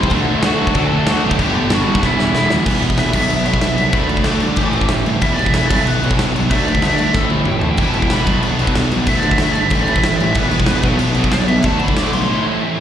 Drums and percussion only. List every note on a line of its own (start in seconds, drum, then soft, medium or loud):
0.03 kick medium
0.10 kick loud
0.10 crash medium
0.43 snare loud
0.43 crash medium
0.67 kick loud
0.74 kick loud
0.74 crash medium
1.07 snare loud
1.07 crash medium
1.31 kick loud
1.39 kick loud
1.39 crash medium
1.70 snare loud
1.70 crash medium
1.95 kick medium
2.03 kick loud
2.03 snare medium
2.19 snare medium
2.35 snare loud
2.50 snare loud
2.66 kick loud
2.66 crash loud
2.66 crash medium
2.82 crash medium
2.90 kick medium
2.98 snare loud
2.98 crash medium
3.13 kick loud
3.13 crash loud
3.30 crash medium
3.46 crash medium
3.54 kick medium
3.61 snare loud
3.61 crash medium
3.78 crash medium
3.93 kick loud
3.93 crash medium
4.09 crash medium
4.17 kick medium
4.24 snare loud
4.24 crash medium
4.40 crash medium
4.56 kick loud
4.56 crash medium
4.73 crash medium
4.81 kick medium
4.89 snare loud
4.89 crash medium
5.06 crash medium
5.21 kick loud
5.21 crash medium
5.39 crash medium
5.46 kick medium
5.54 snare loud
5.54 crash medium
5.71 kick loud
5.71 crash loud
5.87 crash medium
6.04 crash medium
6.11 kick loud
6.19 snare loud
6.19 crash medium
6.36 crash medium
6.51 kick loud
6.51 crash medium
6.68 crash medium
6.75 kick medium
6.82 snare loud
6.82 crash medium
6.99 crash medium
7.14 kick loud
7.14 snare medium
7.30 high tom medium
7.45 mid tom medium
7.61 floor tom loud
7.77 kick loud
7.77 crash medium
7.94 crash medium
8.02 kick medium
8.10 snare loud
8.10 crash medium
8.27 kick loud
8.27 crash medium
8.43 crash medium
8.59 crash medium
8.67 kick medium
8.75 snare loud
8.75 crash medium
8.91 crash medium
9.06 kick loud
9.06 crash medium
9.23 crash medium
9.31 kick medium
9.38 snare loud
9.38 crash medium
9.55 crash medium
9.70 kick loud
9.70 crash medium
9.88 crash medium
9.96 kick medium
10.03 snare loud
10.03 crash medium
10.20 crash medium
10.35 kick loud
10.35 crash medium
10.51 crash medium
10.60 kick loud
10.66 snare loud
10.66 crash medium
10.83 kick loud
10.83 crash medium
10.99 crash medium
11.14 crash medium
11.24 kick medium
11.32 snare loud
11.32 crash medium
11.48 crash medium
11.63 kick loud
11.63 crash medium
11.79 crash medium
11.88 kick medium
11.96 snare loud
11.96 crash medium
12.13 crash medium